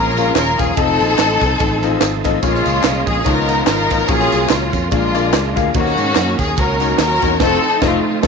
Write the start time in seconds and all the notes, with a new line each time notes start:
Already playing: A#1 F3 G#3 A#3 C#4 F4 G#4 A#4
0.17 C#4 F4 G#4 A#4 F5, ride bell, tambourine
0.36 D#1 A#4, snare, clap, ride bell, tambourine
0.59 E1 C#4 F4 G#4 A#4 F5, kick, snare, ride bell, tambourine
0.77 F1 F3 A3 C4 D#4 F4 A4 D#5, kick, ride bell, tambourine
1.00 A#1, ride bell, tambourine
1.18 A1, snare, clap, ride bell, tambourine
1.41 C2, kick, ride bell, tambourine
1.59 A1, kick, ride bell, tambourine
1.83 C4 D#4 F4 A4 D#5, ride bell, tambourine
2.01 G#1, snare, clap, ride bell, tambourine
2.24 A1 C4 D#4 F4 A4 D#5, kick, snare, ride bell, tambourine
2.42 A#1 A#2 G#3 A#3 C#4 F4 G#4 C#5, kick, ride bell, tambourine
2.48 A#4
2.55 snare
2.66 C#2, ride bell, tambourine
2.84 C2, snare, clap, ride bell, tambourine
3.07 A#1 G#4, kick, ride bell, tambourine
3.24 C#2 C#3 F3 B3 C#4 D#4 F4 A#4 C#5, kick, ride bell, tambourine
3.48 B3 D#4 F4 A#4 D#5, ride bell, tambourine
3.67 G#1 D#4 F4 A#4, snare, clap, ride bell, tambourine
3.90 A1 B3 D#4 F4 A#4 D#5, kick, ride bell, tambourine
4.08 A#1 A#2 F#3 A#3 C#4 F4 G#4 A#4 C#5, kick, ride bell, tambourine
4.20 snare
4.32 C2, ride bell, tambourine
4.49 C#2 C#4 F4, snare, clap, ride bell, tambourine
4.73 F2, kick, ride bell, tambourine
4.91 A#1 A#2 G#3 A#3 D4 F4 G#4 A4 D5, kick, ride bell, tambourine
4.99 A#4
5.14 A#3 D4 F4 G#4 D5, ride bell, tambourine
5.33 C#2, snare, clap, ride bell, tambourine
5.56 D2 A#3 D4 F4 G#4 F5, kick, snare, ride bell, tambourine
5.74 D#2 D#3 F#3 A#3 C#4 D#4 F#4 A#4 C5, kick, ride bell, tambourine
5.79 C#5
5.86 snare
5.97 G#2, ride bell, tambourine
6.15 F#2, snare, clap, ride bell, tambourine
6.39 D#2 G#4, kick, ride bell, tambourine
6.57 C#2 C#4 F#4 A#4, kick, ride bell, tambourine
6.80 A#3 C#4 D#4 F#4 A#4, ride bell, tambourine
6.98 D#2 C#4 F#4 A#4, snare, clap, ride bell, tambourine
7.21 E2 A#3 C#4 D#4 F#4 C#5, kick, ride bell, tambourine
7.39 F1 F3 A3 C4 D#4 F4 A4 C5, kick, snare, crash
7.82 F1 A3 C4 D#4 F4 C5, kick, snare
8.23 F1 A3 C4 D#4 F4 A4, kick, snare